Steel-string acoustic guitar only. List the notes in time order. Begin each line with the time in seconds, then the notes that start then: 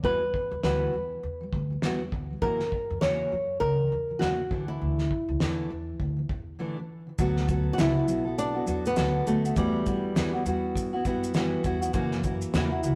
0.03 E3 G3 B3 E4 F#4
0.22 E3 G3
0.51 E3 G3
0.63 E3 G3 B3 E4 F#4
0.93 E3 G3
1.41 E3 G3
1.52 E3 G3
1.70 E3 G3
1.83 E3 G3 B3 E4 F#4
2.00 E3 G3
2.30 E3 G3
2.42 F#2 C#3 E3 A#3 E4 F#4
2.61 F#2 C#3 E3
2.90 F#2 C#3 E3
3.02 F#2 C#3 E3 A#3 E4 F#4
3.32 F#2 C#3 E3
3.79 F#2 C#3 E3
3.91 F#2 C#3 E3
4.09 F#2 C#3 E3
4.21 F#2 C#3 E3 A#3 E4 F#4
4.38 F#2 C#3 E3
4.50 D3 E3 A3 D4 A4
4.97 D3 E3
5.28 D3 E3
5.40 D3 E3 A3 D4 A4
5.69 D3
6.17 D3 E3
6.29 D3 E3
6.59 D3 E3 A3 D4 A4
6.77 D3
7.07 D3 E3
7.18 D3 F#3 B3 F#4 A4
7.49 F#3 B3 F#4 A4
7.79 D3 F#3 B3 F#4 A4
7.95 B3 F#4 A4
8.07 F#3 B3 F#4 A4
8.25 B3 F#4 A4
8.53 B3 F#4 A4
8.66 F#3 B3 F#4 A4
8.96 D3 F#3 B3 F#4 A4
9.25 F#3 B3 F#4 A4
9.44 B3 F#4 A4
9.56 E3 G3 B3 E4 F#4
9.85 G3 B3 E4 F#4
10.15 E3 G3 B3 E4 F#4
10.33 B3 E4 F#4
10.45 G3 B3 E4 F#4
10.93 B3 E4 F#4
11.05 G3 B3 E4 F#4
11.35 E3 G3 B3 E4 F#4
11.63 G3 B3 E4 F#4
11.81 B3 E4 F#4
11.93 F#2 C#3 E3 A#3 E4 F#4
12.23 E3 A#3 E4 F#4
12.54 F#2 C#3 E3 A#3 E4 F#4
12.71 E3 A#3 E4 F#4
12.82 E3 A#3 E4 F#4